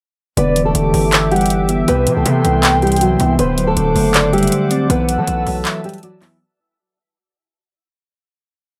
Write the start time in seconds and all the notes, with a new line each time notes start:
0.37 E1 D3 B3 G4 B4 D5 E5 D6, closed hi-hat
0.56 E3, closed hi-hat
0.65 A3 A4
0.75 E1 D3, closed hi-hat
0.94 G1 E3, open hi-hat
1.12 D3 E5, clap, closed hi-hat
1.31 E3 G3 G4 F#5, closed hi-hat
1.36 closed hi-hat
1.41 closed hi-hat
1.46 closed hi-hat
1.50 closed hi-hat
1.69 B3 E5, closed hi-hat
1.88 C2 C3 B3 B4 G5 C6, closed hi-hat
2.07 C3 E3, closed hi-hat
2.16 C2 A3 A4
2.26 C3, closed hi-hat
2.45 C2 E3, closed hi-hat
2.63 C3, clap, closed hi-hat
2.82 E3 G3 G4, closed hi-hat
2.87 closed hi-hat
2.92 closed hi-hat
2.96 closed hi-hat
3.01 F#3 F#4, closed hi-hat
3.20 C2 E3 B3 E4, closed hi-hat
3.39 D1 D3 B3 B4 C5 F#5 D6, closed hi-hat
3.58 F#3, closed hi-hat
3.67 A3 A4
3.77 D1 D3, closed hi-hat
3.96 F#1 A3, open hi-hat
4.14 D3 D5, clap, closed hi-hat
4.33 G3 G4 E5, closed hi-hat
4.38 closed hi-hat
4.43 closed hi-hat
4.47 closed hi-hat
4.52 closed hi-hat
4.71 C4 D5, closed hi-hat
4.90 B1 E3 B3 B4 F#5 A5 E6, closed hi-hat
5.09 F#3, closed hi-hat
5.18 F#3 A3 A4
5.27 B1 E3, closed hi-hat
5.46 B1 F#3, open hi-hat
5.65 E3 E5, clap, closed hi-hat
5.84 F#3 G3 G4, closed hi-hat
5.89 closed hi-hat
5.94 closed hi-hat
5.98 closed hi-hat
6.03 F#3 F#4 D5, closed hi-hat
6.21 E3 B3 E4 E5, clap, open hi-hat